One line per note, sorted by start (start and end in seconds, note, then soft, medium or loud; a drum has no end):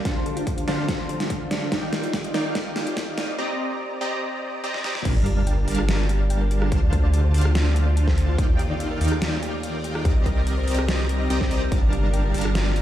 0.00 1.69 F3 medium
0.05 0.66 D2 medium
0.05 1.70 D3 medium
0.05 0.65 D3 medium
0.05 1.70 A3 medium
0.05 1.70 C4 medium
0.05 0.65 D4 medium
0.05 3.35 F4 medium
0.05 0.13 F4 medium
0.05 0.65 C5 medium
0.05 0.65 F5 medium
0.05 0.65 A5 medium
0.05 kick medium
0.05 snare medium
0.05 closed hi-hat medium
0.16 0.23 C6 medium
0.26 0.31 A4 medium
0.26 closed hi-hat medium
0.37 0.46 F4 loud
0.37 closed hi-hat medium
0.47 0.51 A4 medium
0.47 kick loud
0.47 closed hi-hat medium
0.58 0.62 F5 medium
0.58 closed hi-hat medium
0.68 1.70 D2 medium
0.68 1.69 D3 loud
0.68 1.69 D4 medium
0.68 1.69 C5 medium
0.68 0.75 D5 medium
0.68 1.69 F5 medium
0.68 1.69 A5 loud
0.68 snare medium
0.68 open hi-hat medium
0.78 0.88 F5 medium
0.88 0.96 F4 medium
0.88 kick medium
0.88 snare medium
0.88 closed hi-hat medium
0.99 1.06 C6 medium
1.09 1.14 A4 medium
1.09 closed hi-hat medium
1.20 1.30 F4 loud
1.20 snare medium
1.20 closed hi-hat medium
1.30 1.35 A4 medium
1.30 kick loud
1.30 closed hi-hat medium
1.41 1.45 F5 medium
1.51 1.58 D5 medium
1.51 snare medium
1.51 closed hi-hat medium
1.62 1.71 F5 medium
1.72 2.32 D#2 medium
1.72 3.37 D#3 medium
1.72 2.32 D#3 medium
1.72 3.37 G3 medium
1.72 3.37 A#3 medium
1.72 2.32 D#4 medium
1.72 1.79 F4 medium
1.72 3.37 D5 medium
1.72 2.32 D5 medium
1.72 2.32 F5 medium
1.72 2.32 G5 medium
1.72 kick medium
1.72 snare medium
1.72 closed hi-hat medium
1.83 1.90 G5 medium
1.93 1.97 G4 medium
1.93 snare medium
1.93 closed hi-hat medium
2.03 2.13 F4 loud
2.03 closed hi-hat medium
2.13 2.18 G4 medium
2.13 kick loud
2.13 snare medium
2.13 closed hi-hat medium
2.24 2.29 D#5 medium
2.24 closed hi-hat medium
2.34 3.37 D#2 medium
2.34 3.36 D#3 loud
2.34 3.36 D#4 medium
2.34 3.36 D5 medium
2.34 2.42 D5 medium
2.34 3.36 F5 medium
2.34 3.36 G5 loud
2.34 snare medium
2.34 open hi-hat medium
2.45 2.55 D#5 medium
2.55 2.63 F4 medium
2.55 kick loud
2.55 snare medium
2.55 closed hi-hat medium
2.66 2.73 G5 medium
2.76 2.81 G4 medium
2.76 snare medium
2.76 closed hi-hat medium
2.87 2.96 F4 loud
2.87 closed hi-hat medium
2.97 3.01 G4 medium
2.97 kick loud
2.97 snare medium
2.97 closed hi-hat medium
3.08 3.12 D#5 medium
3.18 3.25 D5 medium
3.18 snare medium
3.18 closed hi-hat medium
3.29 3.38 D#5 medium
3.38 3.99 C4 medium
3.38 3.99 G4 medium
3.38 3.99 D5 medium
3.38 3.99 D#5 medium
3.38 3.99 A#5 medium
4.01 4.62 C4 loud
4.01 4.62 G4 medium
4.01 4.62 D5 medium
4.01 4.62 D#5 medium
4.01 4.62 A#5 loud
4.64 4.82 C4 medium
4.64 4.82 G4 medium
4.64 4.82 D5 medium
4.64 4.82 D#5 medium
4.64 4.82 A#5 medium
4.74 snare soft
4.84 4.95 C4 medium
4.84 4.95 G4 medium
4.84 4.95 D5 medium
4.84 4.95 D#5 medium
4.84 4.95 A#5 medium
4.84 snare medium
4.95 snare medium
5.05 5.66 G1 medium
5.05 8.35 D3 medium
5.05 5.65 G3 medium
5.05 6.70 G3 medium
5.05 6.70 A#3 medium
5.05 5.65 D4 medium
5.05 10.01 F4 medium
5.05 5.16 F4 medium
5.05 6.70 G4 medium
5.05 5.65 A#4 medium
5.05 5.65 F5 medium
5.05 5.65 A5 medium
5.05 kick loud
5.05 closed hi-hat medium
5.05 crash loud
5.05 sub drop medium
5.16 5.26 D5 medium
5.26 5.31 G4 medium
5.26 closed hi-hat medium
5.37 5.46 D5 medium
5.47 5.54 G5 medium
5.47 closed hi-hat medium
5.58 5.65 A#4 medium
5.68 6.70 G1 medium
5.68 6.69 G3 loud
5.68 6.70 D4 medium
5.68 5.78 G4 medium
5.68 6.70 A#4 medium
5.68 6.70 F5 medium
5.68 6.70 A5 loud
5.68 closed hi-hat medium
5.68 open hi-hat loud
5.75 5.85 F4 medium
5.75 cross-stick medium
5.75 closed hi-hat medium
5.89 5.99 F4 medium
5.89 snare loud
5.89 closed hi-hat medium
5.99 6.09 D5 medium
6.09 6.14 G4 medium
6.09 closed hi-hat medium
6.20 6.30 D5 medium
6.30 6.38 G5 medium
6.30 closed hi-hat medium
6.41 6.48 A#4 medium
6.51 6.61 G4 medium
6.51 closed hi-hat medium
6.62 6.69 F4 medium
6.62 cross-stick medium
6.72 7.32 D2 medium
6.72 7.32 D3 medium
6.72 8.37 A3 medium
6.72 8.37 C4 medium
6.72 7.32 D4 medium
6.72 6.82 F4 medium
6.72 8.37 A4 medium
6.72 7.32 C5 medium
6.72 7.32 F5 medium
6.72 7.32 A5 medium
6.72 kick loud
6.72 closed hi-hat medium
6.83 6.92 D5 medium
6.93 6.97 A4 medium
6.93 kick medium
6.93 closed hi-hat medium
7.03 7.13 D5 medium
7.13 7.21 A5 medium
7.13 closed hi-hat medium
7.24 7.31 C5 medium
7.34 8.37 D2 medium
7.34 8.36 D3 loud
7.34 8.36 D4 medium
7.34 7.45 A4 medium
7.34 8.36 C5 medium
7.34 8.36 F5 medium
7.34 8.36 A5 loud
7.34 closed hi-hat medium
7.34 open hi-hat medium
7.41 7.52 F4 medium
7.41 cross-stick medium
7.41 closed hi-hat medium
7.55 7.65 F4 medium
7.55 snare loud
7.55 closed hi-hat medium
7.66 7.75 D5 medium
7.76 7.81 A4 medium
7.76 closed hi-hat medium
7.87 7.96 D5 medium
7.97 8.04 A5 medium
7.97 closed hi-hat medium
8.08 8.15 C5 medium
8.08 kick medium
8.08 snare soft
8.18 8.28 A4 medium
8.18 closed hi-hat medium
8.28 8.35 F4 medium
8.38 8.99 D#2 loud
8.38 10.04 D#3 medium
8.38 8.99 D#3 medium
8.38 12.82 G3 medium
8.38 8.99 D#4 medium
8.38 11.69 A#4 medium
8.38 10.04 D5 medium
8.38 8.99 D5 medium
8.38 8.99 F5 medium
8.38 8.99 G5 medium
8.38 kick loud
8.38 closed hi-hat medium
8.49 8.59 D5 medium
8.59 8.64 G4 medium
8.59 closed hi-hat medium
8.70 8.80 D5 medium
8.80 8.88 F5 medium
8.80 closed hi-hat medium
8.91 8.98 A#4 medium
9.01 10.03 D#2 loud
9.01 10.03 D#3 loud
9.01 10.03 D#4 medium
9.01 9.11 G4 medium
9.01 10.03 D5 medium
9.01 10.03 F5 medium
9.01 10.03 G5 loud
9.01 closed hi-hat medium
9.01 open hi-hat medium
9.08 9.19 F4 medium
9.08 cross-stick medium
9.08 closed hi-hat medium
9.22 9.32 F4 medium
9.22 snare loud
9.22 closed hi-hat medium
9.33 9.42 D5 medium
9.43 9.47 G4 medium
9.43 closed hi-hat medium
9.54 9.63 D5 medium
9.63 9.71 F5 medium
9.63 closed hi-hat medium
9.74 9.81 A#4 medium
9.84 9.95 G4 medium
9.84 closed hi-hat medium
9.95 10.02 F4 medium
9.95 cross-stick medium
10.05 10.66 C2 medium
10.05 11.70 C3 medium
10.05 12.82 A#3 medium
10.05 10.65 C4 medium
10.05 11.70 D#4 medium
10.05 10.65 G4 medium
10.05 10.16 G4 medium
10.05 10.65 D5 medium
10.05 10.65 D#5 medium
10.05 10.65 A#5 medium
10.05 kick loud
10.05 closed hi-hat medium
10.16 10.26 D#5 medium
10.26 10.31 A#4 medium
10.26 kick medium
10.26 closed hi-hat medium
10.37 10.46 D#5 medium
10.47 10.54 A#5 medium
10.47 closed hi-hat medium
10.58 10.65 C5 medium
10.68 11.28 C2 medium
10.68 11.28 C4 loud
10.68 11.28 G4 medium
10.68 10.78 A#4 medium
10.68 11.28 D5 medium
10.68 11.28 D#5 medium
10.68 11.28 A#5 loud
10.68 closed hi-hat medium
10.68 open hi-hat medium
10.75 cross-stick medium
10.75 closed hi-hat medium
10.79 10.85 G4 medium
10.88 10.99 G4 medium
10.88 snare loud
10.88 closed hi-hat medium
10.99 11.09 D#5 medium
11.09 11.14 A#4 medium
11.09 closed hi-hat medium
11.20 11.30 D#5 medium
11.30 11.49 C2 medium
11.30 11.49 C4 medium
11.30 11.49 G4 medium
11.30 11.49 D5 medium
11.30 11.49 D#5 medium
11.30 11.38 A#5 medium
11.30 11.49 A#5 medium
11.30 closed hi-hat medium
11.41 11.48 C5 medium
11.41 kick medium
11.41 snare soft
11.51 11.70 C2 loud
11.51 11.61 C4 medium
11.51 11.61 G4 medium
11.51 11.61 A#4 medium
11.51 11.61 D5 medium
11.51 11.61 D#5 medium
11.51 11.61 A#5 medium
11.51 closed hi-hat medium
11.62 11.69 G4 medium
11.72 12.32 G1 medium
11.72 12.82 D3 medium
11.72 12.32 G3 medium
11.72 12.32 D4 medium
11.72 11.82 F4 medium
11.72 12.82 F4 medium
11.72 12.82 A#4 medium
11.72 12.32 A#4 medium
11.72 12.32 F5 medium
11.72 12.32 A5 medium
11.72 kick loud
11.72 closed hi-hat medium
11.83 11.92 D5 medium
11.93 11.97 G4 medium
11.93 closed hi-hat medium
12.04 12.13 D5 medium
12.14 12.21 G5 medium
12.14 closed hi-hat medium
12.24 12.31 A#4 medium
12.34 12.82 G1 medium
12.34 12.82 G3 medium
12.34 12.82 D4 medium
12.34 12.45 G4 medium
12.34 12.82 A#4 medium
12.34 12.82 F5 medium
12.34 12.82 A5 loud
12.34 closed hi-hat medium
12.34 open hi-hat medium
12.41 12.52 F4 medium
12.41 cross-stick medium
12.41 closed hi-hat medium
12.55 12.65 F4 medium
12.55 snare loud
12.55 closed hi-hat medium
12.66 12.76 D5 medium
12.76 12.81 G4 medium
12.76 closed hi-hat medium